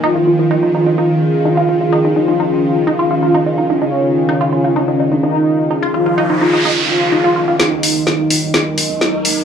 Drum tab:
HH |--------|--------|--------|--------|
SD |--------|--------|--------|--------|

HH |-o-o-o-o|
SD |o-o-o-o-|